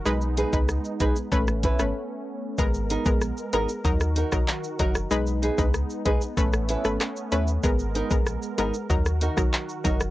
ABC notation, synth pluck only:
X:1
M:4/4
L:1/16
Q:1/4=95
K:G#m
V:1 name="Synth pluck"
[G,DB]3 [G,DB]3 [G,DB]2 [=A,CB] z2 [A,CB] z4 | [G,B,A]3 [G,B,A]3 [G,B,A]2 [F,DA] z2 [F,DA] z2 [F,DA] z | [G,DB]3 [G,DB]3 [G,DB]2 [=A,CB] z2 [A,CB] z2 [A,CB] z | [G,B,A]3 [G,B,A]3 [G,B,A]2 [F,DA] z2 [F,DA] z2 [F,DA] z |]